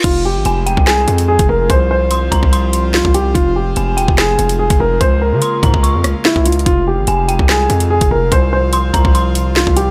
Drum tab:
CC |x-----------------------------------------------|------------------------------------------------|------------------------------------------------|------------------------------------------------|
HH |x-----------x-----x-----------x--x-----x--------|x-----------x-----x-----x-----x-----------x-----|x-----------x-----x-----------x--x-----x--------|x-----------x-----x-----x-----x-----------x-x-x-|
CP |------------------------x-----------------------|------------------------------------x-----------|------------------------x-----------------------|------------------------------------x-----------|
SD |------------------------o-----------------------|------------------------------------o-----------|------------------------o-----------------------|------------------------------r-----o-----------|
BD |o--------------------o-----------------o--------|o-----------------o--o-----------------o--------|o--------------------o-----------------o--------|o-----------------o--o-----------------o--------|

CC |------------------------------------------------|------------------------------------------------|
HH |x-----------x-----x-----------x--x-----x--------|x-----------x-----x-----x-----x-----------x-----|
CP |------------------------x-----------------------|------------------------------------x-----------|
SD |------------------------o-----------------------|------------------------------------o-----------|
BD |o--------------------o-----------------o--------|o-----------------o--o-----------------o--------|